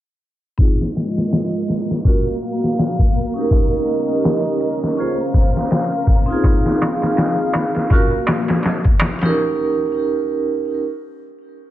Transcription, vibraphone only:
0, 0, Header, 1, 2, 480
1, 0, Start_track
1, 0, Key_signature, -4, "minor"
1, 0, Tempo, 731707
1, 387, Time_signature, 4, 2, 24, 8
1, 7678, End_track
2, 0, Start_track
2, 0, Title_t, "Vibraphone"
2, 0, Program_c, 0, 11
2, 378, Note_on_c, 0, 60, 71
2, 384, Note_on_c, 0, 63, 69
2, 395, Note_on_c, 0, 65, 63
2, 400, Note_on_c, 0, 68, 73
2, 498, Note_off_c, 0, 60, 0
2, 501, Note_off_c, 0, 63, 0
2, 506, Note_off_c, 0, 65, 0
2, 509, Note_off_c, 0, 68, 0
2, 1342, Note_on_c, 0, 61, 79
2, 1353, Note_on_c, 0, 65, 69
2, 1358, Note_on_c, 0, 66, 74
2, 1363, Note_on_c, 0, 70, 84
2, 1460, Note_off_c, 0, 61, 0
2, 1465, Note_off_c, 0, 65, 0
2, 1468, Note_off_c, 0, 66, 0
2, 1470, Note_off_c, 0, 70, 0
2, 2191, Note_on_c, 0, 61, 78
2, 2204, Note_on_c, 0, 63, 69
2, 2218, Note_on_c, 0, 67, 69
2, 2234, Note_on_c, 0, 70, 85
2, 3247, Note_off_c, 0, 61, 0
2, 3254, Note_off_c, 0, 63, 0
2, 3261, Note_off_c, 0, 67, 0
2, 3262, Note_on_c, 0, 61, 82
2, 3269, Note_off_c, 0, 70, 0
2, 3271, Note_on_c, 0, 65, 79
2, 3278, Note_on_c, 0, 68, 73
2, 3284, Note_on_c, 0, 72, 97
2, 3380, Note_off_c, 0, 61, 0
2, 3384, Note_off_c, 0, 65, 0
2, 3388, Note_off_c, 0, 68, 0
2, 3391, Note_off_c, 0, 72, 0
2, 4106, Note_on_c, 0, 60, 81
2, 4120, Note_on_c, 0, 63, 71
2, 4134, Note_on_c, 0, 65, 72
2, 4149, Note_on_c, 0, 68, 82
2, 5165, Note_off_c, 0, 60, 0
2, 5172, Note_off_c, 0, 63, 0
2, 5179, Note_off_c, 0, 65, 0
2, 5186, Note_off_c, 0, 68, 0
2, 5191, Note_on_c, 0, 61, 85
2, 5199, Note_on_c, 0, 65, 76
2, 5206, Note_on_c, 0, 66, 77
2, 5213, Note_on_c, 0, 70, 91
2, 5304, Note_off_c, 0, 61, 0
2, 5308, Note_off_c, 0, 65, 0
2, 5312, Note_off_c, 0, 66, 0
2, 5315, Note_off_c, 0, 70, 0
2, 6029, Note_on_c, 0, 61, 76
2, 6045, Note_on_c, 0, 63, 70
2, 6057, Note_on_c, 0, 67, 74
2, 6072, Note_on_c, 0, 70, 89
2, 7087, Note_off_c, 0, 61, 0
2, 7095, Note_off_c, 0, 63, 0
2, 7101, Note_off_c, 0, 67, 0
2, 7108, Note_off_c, 0, 70, 0
2, 7678, End_track
0, 0, End_of_file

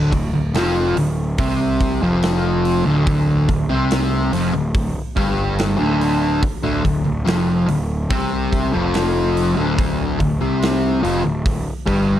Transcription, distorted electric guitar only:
0, 0, Header, 1, 2, 480
1, 0, Start_track
1, 0, Key_signature, -1, "minor"
1, 0, Tempo, 839161
1, 1755, Time_signature, 4, 2, 24, 8
1, 6976, End_track
2, 0, Start_track
2, 0, Title_t, "Distorted electric guitar"
2, 0, Program_c, 0, 30
2, 0, Note_on_c, 0, 38, 78
2, 0, Note_on_c, 0, 50, 107
2, 61, Note_off_c, 0, 38, 0
2, 63, Note_off_c, 0, 50, 0
2, 69, Note_on_c, 0, 38, 71
2, 185, Note_off_c, 0, 38, 0
2, 192, Note_on_c, 0, 38, 62
2, 309, Note_off_c, 0, 38, 0
2, 312, Note_on_c, 0, 41, 89
2, 317, Note_on_c, 0, 53, 100
2, 545, Note_off_c, 0, 41, 0
2, 548, Note_off_c, 0, 53, 0
2, 558, Note_on_c, 0, 38, 77
2, 748, Note_off_c, 0, 38, 0
2, 794, Note_on_c, 0, 48, 87
2, 798, Note_on_c, 0, 60, 102
2, 1147, Note_off_c, 0, 48, 0
2, 1149, Note_off_c, 0, 60, 0
2, 1157, Note_on_c, 0, 41, 96
2, 1160, Note_on_c, 0, 53, 105
2, 1629, Note_off_c, 0, 41, 0
2, 1631, Note_off_c, 0, 53, 0
2, 1631, Note_on_c, 0, 38, 95
2, 1635, Note_on_c, 0, 50, 101
2, 1986, Note_off_c, 0, 38, 0
2, 1988, Note_off_c, 0, 50, 0
2, 1997, Note_on_c, 0, 38, 74
2, 2109, Note_off_c, 0, 38, 0
2, 2111, Note_on_c, 0, 48, 84
2, 2115, Note_on_c, 0, 60, 98
2, 2466, Note_off_c, 0, 48, 0
2, 2468, Note_off_c, 0, 60, 0
2, 2476, Note_on_c, 0, 41, 88
2, 2479, Note_on_c, 0, 53, 93
2, 2589, Note_off_c, 0, 41, 0
2, 2590, Note_off_c, 0, 53, 0
2, 2595, Note_on_c, 0, 38, 72
2, 2787, Note_off_c, 0, 38, 0
2, 2953, Note_on_c, 0, 43, 91
2, 2957, Note_on_c, 0, 55, 99
2, 3304, Note_off_c, 0, 43, 0
2, 3306, Note_on_c, 0, 38, 90
2, 3309, Note_off_c, 0, 55, 0
2, 3311, Note_on_c, 0, 50, 92
2, 3663, Note_off_c, 0, 38, 0
2, 3666, Note_off_c, 0, 50, 0
2, 3792, Note_on_c, 0, 38, 82
2, 3793, Note_on_c, 0, 50, 105
2, 3905, Note_off_c, 0, 38, 0
2, 3907, Note_off_c, 0, 50, 0
2, 3912, Note_on_c, 0, 38, 71
2, 4021, Note_off_c, 0, 38, 0
2, 4028, Note_on_c, 0, 38, 67
2, 4144, Note_off_c, 0, 38, 0
2, 4146, Note_on_c, 0, 41, 100
2, 4149, Note_on_c, 0, 53, 101
2, 4383, Note_off_c, 0, 41, 0
2, 4384, Note_off_c, 0, 53, 0
2, 4390, Note_on_c, 0, 38, 74
2, 4584, Note_off_c, 0, 38, 0
2, 4631, Note_on_c, 0, 48, 92
2, 4636, Note_on_c, 0, 60, 102
2, 4985, Note_off_c, 0, 48, 0
2, 4987, Note_off_c, 0, 60, 0
2, 4991, Note_on_c, 0, 41, 90
2, 4997, Note_on_c, 0, 53, 101
2, 5464, Note_off_c, 0, 41, 0
2, 5467, Note_off_c, 0, 53, 0
2, 5468, Note_on_c, 0, 38, 101
2, 5473, Note_on_c, 0, 50, 104
2, 5821, Note_off_c, 0, 38, 0
2, 5825, Note_off_c, 0, 50, 0
2, 5828, Note_on_c, 0, 38, 73
2, 5950, Note_off_c, 0, 38, 0
2, 5953, Note_on_c, 0, 48, 85
2, 5958, Note_on_c, 0, 60, 96
2, 6304, Note_off_c, 0, 48, 0
2, 6306, Note_off_c, 0, 60, 0
2, 6308, Note_on_c, 0, 41, 98
2, 6310, Note_on_c, 0, 53, 102
2, 6422, Note_off_c, 0, 41, 0
2, 6423, Note_off_c, 0, 53, 0
2, 6431, Note_on_c, 0, 38, 70
2, 6622, Note_off_c, 0, 38, 0
2, 6784, Note_on_c, 0, 43, 87
2, 6789, Note_on_c, 0, 55, 98
2, 6976, Note_off_c, 0, 43, 0
2, 6976, Note_off_c, 0, 55, 0
2, 6976, End_track
0, 0, End_of_file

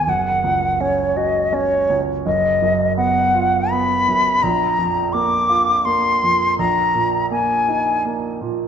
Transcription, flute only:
0, 0, Header, 1, 2, 480
1, 0, Start_track
1, 0, Tempo, 723764
1, 48, Time_signature, 3, 2, 24, 8
1, 1968, Tempo, 755668
1, 2448, Tempo, 704225
1, 3408, Tempo, 727273
1, 5749, End_track
2, 0, Start_track
2, 0, Title_t, "Flute"
2, 0, Program_c, 0, 73
2, 0, Note_on_c, 0, 80, 75
2, 60, Note_on_c, 0, 78, 72
2, 70, Note_off_c, 0, 80, 0
2, 536, Note_on_c, 0, 73, 67
2, 546, Note_off_c, 0, 78, 0
2, 775, Note_on_c, 0, 75, 66
2, 785, Note_off_c, 0, 73, 0
2, 1023, Note_on_c, 0, 73, 75
2, 1033, Note_off_c, 0, 75, 0
2, 1331, Note_off_c, 0, 73, 0
2, 1500, Note_on_c, 0, 75, 83
2, 1944, Note_off_c, 0, 75, 0
2, 1970, Note_on_c, 0, 78, 84
2, 2442, Note_on_c, 0, 83, 89
2, 2451, Note_off_c, 0, 78, 0
2, 2926, Note_on_c, 0, 82, 89
2, 2936, Note_off_c, 0, 83, 0
2, 3405, Note_on_c, 0, 86, 92
2, 3415, Note_off_c, 0, 82, 0
2, 3883, Note_on_c, 0, 84, 93
2, 3893, Note_off_c, 0, 86, 0
2, 4364, Note_off_c, 0, 84, 0
2, 4368, Note_on_c, 0, 82, 87
2, 4836, Note_off_c, 0, 82, 0
2, 4848, Note_on_c, 0, 80, 78
2, 5323, Note_off_c, 0, 80, 0
2, 5749, End_track
0, 0, End_of_file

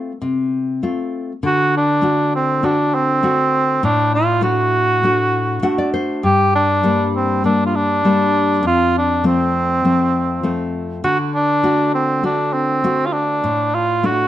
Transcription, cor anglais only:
0, 0, Header, 1, 2, 480
1, 0, Start_track
1, 0, Tempo, 600601
1, 1149, Time_signature, 4, 2, 24, 8
1, 11411, End_track
2, 0, Start_track
2, 0, Title_t, "Cor anglais"
2, 0, Program_c, 0, 69
2, 1168, Note_on_c, 0, 66, 103
2, 1383, Note_off_c, 0, 66, 0
2, 1416, Note_on_c, 0, 62, 91
2, 1851, Note_off_c, 0, 62, 0
2, 1882, Note_on_c, 0, 60, 82
2, 2119, Note_on_c, 0, 62, 91
2, 2131, Note_off_c, 0, 60, 0
2, 2356, Note_on_c, 0, 60, 98
2, 2368, Note_off_c, 0, 62, 0
2, 3070, Note_off_c, 0, 60, 0
2, 3075, Note_on_c, 0, 62, 94
2, 3295, Note_off_c, 0, 62, 0
2, 3313, Note_on_c, 0, 65, 84
2, 3534, Note_off_c, 0, 65, 0
2, 3549, Note_on_c, 0, 66, 95
2, 4715, Note_off_c, 0, 66, 0
2, 4993, Note_on_c, 0, 67, 110
2, 5213, Note_off_c, 0, 67, 0
2, 5238, Note_on_c, 0, 62, 97
2, 5679, Note_off_c, 0, 62, 0
2, 5723, Note_on_c, 0, 60, 84
2, 5938, Note_off_c, 0, 60, 0
2, 5958, Note_on_c, 0, 62, 87
2, 6119, Note_off_c, 0, 62, 0
2, 6124, Note_on_c, 0, 65, 65
2, 6201, Note_on_c, 0, 62, 99
2, 6213, Note_off_c, 0, 65, 0
2, 6912, Note_off_c, 0, 62, 0
2, 6927, Note_on_c, 0, 65, 95
2, 7140, Note_off_c, 0, 65, 0
2, 7178, Note_on_c, 0, 62, 81
2, 7385, Note_off_c, 0, 62, 0
2, 7410, Note_on_c, 0, 60, 86
2, 8564, Note_off_c, 0, 60, 0
2, 8826, Note_on_c, 0, 66, 96
2, 8934, Note_off_c, 0, 66, 0
2, 9073, Note_on_c, 0, 62, 96
2, 9516, Note_off_c, 0, 62, 0
2, 9549, Note_on_c, 0, 60, 83
2, 9770, Note_off_c, 0, 60, 0
2, 9792, Note_on_c, 0, 62, 83
2, 10016, Note_on_c, 0, 60, 91
2, 10028, Note_off_c, 0, 62, 0
2, 10440, Note_on_c, 0, 65, 67
2, 10452, Note_off_c, 0, 60, 0
2, 10493, Note_on_c, 0, 62, 88
2, 10505, Note_off_c, 0, 65, 0
2, 10985, Note_on_c, 0, 65, 85
2, 10997, Note_off_c, 0, 62, 0
2, 11232, Note_on_c, 0, 66, 99
2, 11244, Note_off_c, 0, 65, 0
2, 11411, Note_off_c, 0, 66, 0
2, 11411, End_track
0, 0, End_of_file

